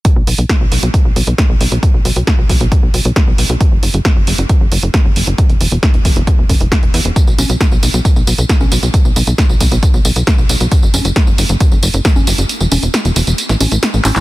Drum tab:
HH |x-oxx-oxx-oxx-ox|x-oxx-oxx-oxx-ox|x-oxx-oxx-oxx-ox|xxoxxxoxx-oxxxox|
TB |----------------|----------------|----------------|----------------|
CP |----------------|----------------|----------------|----------------|
SD |----o-------o---|----o-------o---|----o-------o---|----o-------o---|
CG |----------------|----------------|----------------|----------------|
BD |o---o---o---o---|o---o-o-o---o---|o---o---o---o---|o---o-o-o-o-o---|

HH |x-oxx-oxx-oxx-ox|x-oxx-oxx-oxx-ox|x-oxx-oxx-oxx-ox|x-oxxxoxxxoxx-ox|
TB |xxxxxxxxxxxxxxxx|xxxxxxxxxxxxxxxx|xxxxxxxxxxxxxxxx|xxxxxxxxxxxxxxxx|
CP |----------------|----------------|----------------|--------------xx|
SD |----o-------o---|----o-------o---|----o-------o---|----o----o--o---|
CG |--o----------o--|----------------|--o----------o--|--o-------o---o-|
BD |o---o---o---o---|o---o-o-o---o---|o---o---o---o---|----------------|